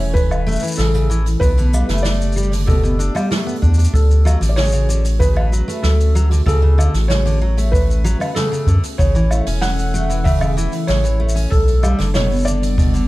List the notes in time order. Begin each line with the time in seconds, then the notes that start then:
Already playing: E1 E3 A3 C#4 A4 C#5
0.00 C#4, open hi-hat
0.14 B4, kick, open hi-hat, shaker
0.31 low woodblock, shaker
0.47 A3, shaker
0.52 shaker
0.56 shaker
0.59 E3, open hi-hat, shaker
0.64 shaker
0.68 shaker
0.71 shaker
0.75 A1 C#3 A4, open hi-hat, shaker
0.79 snare, shaker
0.94 C#3, open hi-hat, shaker
1.10 E3, shaker
1.26 open hi-hat, shaker
1.40 B1 B2 B3 G4 B4, kick, open hi-hat, shaker
1.57 D3, open hi-hat, shaker
1.73 G3, low woodblock, shaker
1.89 F#1 A3, snare, open hi-hat, shaker
1.98 shaker
2.03 D5, snare, open hi-hat, shaker
2.14 shaker
2.20 open hi-hat, shaker
2.32 G3, shaker
2.37 shaker
2.43 shaker
2.52 D3, open hi-hat, shaker
2.66 B2 A4, kick, open hi-hat, shaker
2.83 B2, shaker
2.99 D4, shaker
3.15 G3, open hi-hat, low woodblock, shaker
3.31 A3, snare, open hi-hat, shaker
3.46 B3, shaker
3.55 open hi-hat
3.62 E2 D4, kick, shaker
3.74 D4, shaker
3.79 open hi-hat, shaker
3.84 shaker
3.93 D2 C#4 F#4 A4, kick, open hi-hat, shaker
4.11 shaker
4.25 F#3, low woodblock, shaker
4.41 A1 D3, open hi-hat, shaker
4.49 D5
4.56 C#3 C#5, snare, open hi-hat, shaker
4.61 shaker
4.63 shaker
4.65 shaker
4.68 shaker
4.70 shaker
4.72 C#3, open hi-hat, shaker
4.74 shaker
4.89 D3, shaker
5.05 open hi-hat, shaker
5.20 C#3 B4, kick, open hi-hat, shaker
5.36 D3, low woodblock
5.52 F#3, shaker
5.68 A3, open hi-hat, shaker
5.82 D2 A4, snare, open hi-hat, shaker
6.00 open hi-hat, shaker
6.15 F#3, shaker
6.31 D3, open hi-hat, shaker
6.46 D2 C#3 A4, kick, open hi-hat, shaker
6.62 C#3
6.78 D3, low woodblock, shaker
6.94 A1, snare, open hi-hat, shaker
7.08 C#3 C#5, snare, open hi-hat, shaker
7.26 D3, open hi-hat, shaker
7.41 F#3
7.57 A3, open hi-hat, shaker
7.72 B4, kick, open hi-hat, shaker
7.91 shaker
8.04 F#3, shaker
8.20 D3, open hi-hat, low woodblock, shaker
8.35 C#3 A4, snare, open hi-hat, shaker
8.52 C#3, open hi-hat, shaker
8.67 F#2 D3, kick, shaker
8.83 open hi-hat, shaker
8.98 A1 C#3 E3 A4 C#5, kick, open hi-hat, shaker
9.15 E3, shaker
9.31 A3, low woodblock, shaker
9.47 E1 C#4, open hi-hat, shaker
9.61 F#5, snare, open hi-hat, shaker
9.78 open hi-hat, shaker
9.94 A3, shaker
10.10 E3, open hi-hat, shaker
10.24 C#3 E5, kick, open hi-hat, shaker
10.41 C#3, low woodblock, shaker
10.57 E3, shaker
10.72 open hi-hat, shaker
10.87 A1 C#3 C#5, snare, open hi-hat, shaker
11.04 E3, open hi-hat, shaker
11.20 A3
11.29 shaker
11.35 C#4, open hi-hat, shaker
11.50 B1 G3 B3 D4 A4, kick, open hi-hat, shaker
11.67 open hi-hat, shaker
11.83 G3, low woodblock, shaker
11.99 F#1 D3, snare, open hi-hat, shaker
12.14 B2 C#5, snare, open hi-hat, shaker
12.30 B2, open hi-hat, shaker
12.34 shaker
12.36 shaker
12.38 shaker
12.41 shaker
12.43 D5, shaker
12.45 D3, shaker
12.47 shaker
12.63 open hi-hat, shaker
12.78 B2, kick, open hi-hat, shaker
12.94 D3, open hi-hat, shaker